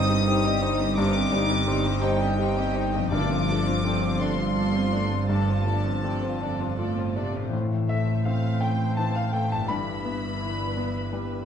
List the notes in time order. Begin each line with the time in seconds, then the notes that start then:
Already playing: G1 G2 G3 C4 D#4 D#6
0.10 C4 G4 D#5
0.28 G3 D#4 G4 C5
0.45 C4 G4 D#5
0.62 G3 D#4 C5
0.79 C4 G4 D#5
0.97 G2 G3 D#4 C5 D6
1.15 C4 G4 D#5
1.32 G3 D#4 C5
1.50 C4 G4 D#5
1.67 G3 C4 D#4 C5
1.85 C4 G4 D#5
2.02 G3 D#4 C5 G5
2.19 C4 G4 D#5
2.37 G3 D#4 G4 C5
2.56 C4 G4 D#5
2.74 G3 D#4 C5
2.93 G2 C4 G4 D#5
2.98 F3
3.03 C4
3.07 G1 G2 A3 D4 D6
3.12 G2 A4 D5
3.29 C4 F4 C5
3.48 F3 A3 D4 A4 D5
3.65 C4 F4 C5
3.84 A3 C4 D4 A4 D5
4.02 C4 F4 C5
4.20 A3 D4 A4 D5 C6
4.37 C4 F4 C5
4.56 A3 D4 F4 A4 D5
4.75 C4 F4 C5
4.92 A3 D4 A4 D5
5.11 C4 F4 C5
5.29 G2 A3 D4 A4 D5 A5
5.49 C4 F4 C5
5.67 F3 A3 D4 A4 D5
5.86 C4 F4 C5
6.04 A3 C4 D4 A4 D5
6.23 C4 F4 C5
6.42 F2 A3 D4 A4 D5
6.59 C4 F4 C5
6.79 A2 A3 D4 F4 A4 D5
6.97 C4 F4 C5
7.16 C3 A3 D4 A4 D5
7.35 A2 C4 F4 C5
7.40 A3
7.45 C4
7.49 E3
7.53 A1 A2 E3 C5 E5
7.89 A3 E5
8.25 C4 F5
8.61 A3 G5
8.97 E3 A5
9.16 F5
9.33 A3 G5
9.51 G2 A5
9.56 B3
9.61 E4
9.65 G4 B5
9.69 G1 G2 B4 B5
10.05 B3
10.40 E4
10.77 B3
11.13 G3